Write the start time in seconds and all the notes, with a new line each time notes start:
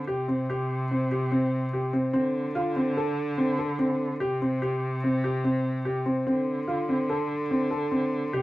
0.07 C3 G4
0.28 C4
0.50 G4
0.91 C4
1.11 G4
1.32 C4
1.73 G4
1.93 C4
2.13 D3 C4
2.55 F4
2.76 C4
2.97 A4
3.38 C4
3.59 A4
3.79 C4
4.20 C3 G4
4.42 C4
4.62 G4
5.04 C4
5.24 G4
5.44 C4
5.85 G4
6.06 C4
6.27 D3 C4
6.68 F4
6.89 C4
7.10 A4
7.51 C4
7.71 A4
7.92 C4
8.33 C3 G4